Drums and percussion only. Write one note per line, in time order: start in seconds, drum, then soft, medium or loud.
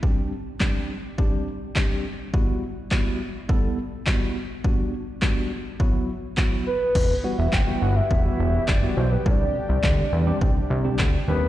0.03 kick loud
0.60 kick loud
0.60 snare medium
0.60 clap loud
1.18 kick loud
1.76 kick loud
1.76 snare medium
1.76 clap loud
2.34 kick loud
2.91 kick loud
2.91 snare medium
2.91 clap loud
3.49 kick loud
4.06 kick loud
4.06 snare medium
4.06 clap loud
4.64 kick loud
5.22 kick loud
5.22 snare medium
5.22 clap loud
5.80 kick loud
6.37 kick loud
6.37 snare medium
6.37 clap loud
6.95 kick loud
6.95 crash medium
7.53 kick loud
7.53 snare medium
7.53 clap loud
8.11 kick loud
8.68 kick loud
8.68 snare medium
8.68 clap loud
9.26 kick loud
9.83 kick loud
9.83 snare medium
9.83 clap loud
10.41 kick loud
10.99 kick loud
10.99 snare medium
10.99 clap loud